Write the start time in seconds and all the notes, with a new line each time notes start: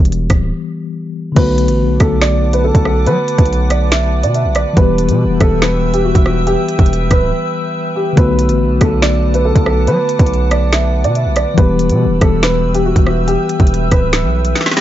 Already playing: E3 G3 B3 G4
0.00 E1
0.05 closed hi-hat
0.12 closed hi-hat
0.30 D1, kick, cross-stick, closed hi-hat
1.32 D3 A3
1.36 B1 B3 F#4 B4 F#5 A5 D6, kick, closed hi-hat, crash
1.58 closed hi-hat
1.68 A1, closed hi-hat
1.84 B1
2.00 B1 A4, kick, cross-stick, closed hi-hat
2.21 D5, snare
2.53 B4, closed hi-hat
2.64 A4
2.75 B1, kick, closed hi-hat
2.85 A4, cross-stick
3.07 F#3 B4, closed hi-hat
3.28 closed hi-hat
3.38 B1, kick, closed hi-hat
3.46 closed hi-hat
3.53 closed hi-hat
3.70 D5, cross-stick, closed hi-hat
3.92 E5, snare, closed hi-hat
4.24 B2 D5, closed hi-hat
4.34 E5, closed hi-hat
4.45 B1
4.55 D5, cross-stick, closed hi-hat
4.73 E1 E3 G3 B4 E5 G5 E6, kick, closed hi-hat
4.79 B3 G4
4.98 closed hi-hat
5.09 B2, closed hi-hat
5.25 E1
5.41 E1 A4, kick, cross-stick, closed hi-hat
5.62 B4, snare
5.94 G4, closed hi-hat
6.05 F#4
6.15 E1, kick, closed hi-hat
6.26 F#4, cross-stick
6.47 G4, closed hi-hat
6.69 closed hi-hat
6.79 E1, kick, closed hi-hat
6.86 closed hi-hat
6.93 closed hi-hat
7.11 D1 B4, kick, cross-stick, closed hi-hat
7.96 G4
8.13 D3 A3
8.17 B1 B3 F#4 B4 F#5 A5 D6, kick, closed hi-hat
8.39 closed hi-hat
8.49 A1, closed hi-hat
8.65 B1
8.81 B1 A4, kick, cross-stick, closed hi-hat
9.02 D5, snare
9.34 B4, closed hi-hat
9.45 A4
9.56 B1, kick, closed hi-hat
9.66 A4, cross-stick
9.87 F#3 B4, closed hi-hat
10.09 closed hi-hat
10.19 B1, kick, closed hi-hat
10.26 closed hi-hat
10.34 closed hi-hat
10.51 D5, cross-stick, closed hi-hat
10.73 E5, snare, closed hi-hat
11.04 B2 D5, closed hi-hat
11.15 E5, closed hi-hat
11.26 B1
11.36 D5, cross-stick, closed hi-hat
11.54 E1 E3 G3 B4 E5 G5 E6, kick, closed hi-hat
11.59 B3 G4
11.79 closed hi-hat
11.90 B2, closed hi-hat
12.05 E1
12.21 E1 A4, kick, cross-stick, closed hi-hat
12.43 B4, snare
12.75 G4, closed hi-hat
12.85 F#4
12.96 E1, kick, closed hi-hat
13.07 F#4, cross-stick
13.28 G4, closed hi-hat
13.49 closed hi-hat
13.60 E1, kick, closed hi-hat
13.67 closed hi-hat
13.74 closed hi-hat
13.92 D1 B4, kick, cross-stick, closed hi-hat
14.13 snare, closed hi-hat
14.24 B1
14.45 closed hi-hat
14.56 snare, closed hi-hat
14.61 snare
14.66 snare
14.71 snare
14.76 G4, snare, open hi-hat